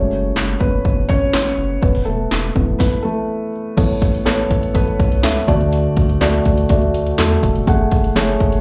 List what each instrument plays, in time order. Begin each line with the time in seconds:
Already playing: felt piano F#3 G#3 A3 C#4 C#5
0.12 analog synth bass F#1
0.36 analog synth bass F#1, snare, clap
0.60 analog synth bass F#1, felt piano B3 B4, kick
0.85 analog synth bass F#1, kick
1.09 analog synth bass G#1, felt piano C#4 C#5, kick
1.34 analog synth bass A1, snare, clap
1.58 analog synth bass F#1
1.81 analog synth bass E1, felt piano B3 B4, kick
1.95 snare
2.05 analog synth bass E1, felt piano A3 A4
2.31 analog synth bass E1, snare, clap
2.55 analog synth bass E1, felt piano E3 A3 B3, kick
2.79 felt piano B3 B4, kick, snare
3.03 felt piano A3 A4
3.77 analog synth bass A1, felt piano A2 B3 A4 C#5, kick, closed hi-hat, crash
4.02 analog synth bass A1, kick, closed hi-hat
4.15 closed hi-hat
4.25 analog synth bass A1, felt piano B3 A4 C#5, snare, clap, closed hi-hat
4.39 closed hi-hat
4.50 analog synth bass A1, kick, closed hi-hat
4.63 closed hi-hat
4.74 analog synth bass A1, felt piano B3 A4 B4, kick, closed hi-hat
4.87 closed hi-hat
4.99 analog synth bass B1, kick, closed hi-hat
5.12 closed hi-hat
5.23 analog synth bass C#2, felt piano B3 A4 E5, snare, clap, closed hi-hat
5.47 analog synth bass D2, felt piano D3 A3 F#4 D5, kick, closed hi-hat
5.61 closed hi-hat
5.73 closed hi-hat
5.96 analog synth bass D2, kick, closed hi-hat
6.09 closed hi-hat
6.21 analog synth bass D2, felt piano A3 F#4 D5, snare, clap, closed hi-hat
6.34 closed hi-hat
6.45 analog synth bass D2, kick, closed hi-hat
6.58 closed hi-hat
6.69 analog synth bass D2, felt piano A3 F#4 D5, kick, closed hi-hat
6.82 closed hi-hat
6.94 analog synth bass D2, closed hi-hat
7.07 closed hi-hat
7.18 analog synth bass E2, felt piano A3 F#4 A4, snare, clap, closed hi-hat
7.43 analog synth bass E1, kick, closed hi-hat
7.56 closed hi-hat
7.67 analog synth bass F#1, felt piano A3 G#4 F#5, kick, closed hi-hat
7.91 analog synth bass F#1, kick, closed hi-hat
8.04 closed hi-hat
8.15 analog synth bass F#1, felt piano A3 G#4 C#5, snare, clap, closed hi-hat
8.28 closed hi-hat
8.40 analog synth bass F#1, kick, closed hi-hat
8.52 closed hi-hat